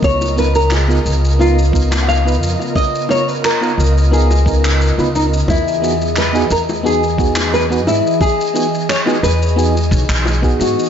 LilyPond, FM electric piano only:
\new Staff \with { instrumentName = "FM electric piano" } { \time 4/4 \key cis \dorian \tempo 4 = 88 <b dis' eis' ais'>8 <b dis' eis' ais'>16 r8 <b dis' eis' ais'>16 r8 <b dis' eis' ais'>16 r16 <b dis' eis' ais'>8. <b dis' eis' b'>16 r8 | r8 <b dis' eis' ais'>16 r8 <b dis' eis' ais'>16 r8 <b dis' eis' ais'>16 r16 <b dis' eis' ais'>8. <b dis' eis' b'>16 r8 | r8 <b dis' fis' gis'>16 r8 <b dis' fis' gis'>16 r8 <b dis' fis' gis'>16 r16 <b dis' fis' gis'>8. <b dis' fis' b'>16 r8 | r8 <b dis' fis' gis'>16 r8 <b dis' fis' gis'>16 r8 <b dis' fis' gis'>16 r4 <b dis' fis' gis'>8. | }